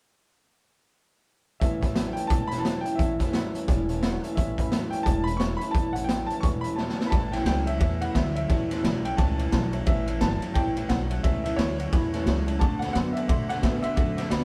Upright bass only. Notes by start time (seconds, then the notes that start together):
1.61 A1
2.30 E1
2.99 A1
3.68 E1
4.37 A1
5.06 E1
5.75 A1
6.43 E1
7.12 A1
7.45 C#2
7.81 E2
8.15 D2
8.50 E2
8.84 B1
9.18 C#2
9.52 B1
9.87 A1
10.21 G1
10.42 muted upright bass stroke
10.55 A1
10.89 B1
11.24 C#2
11.58 D2
11.93 E2
12.26 C#2
12.61 D2
12.95 F#2
13.29 B2
13.63 A2
13.84 muted upright bass stroke
13.97 F#2
14.31 D2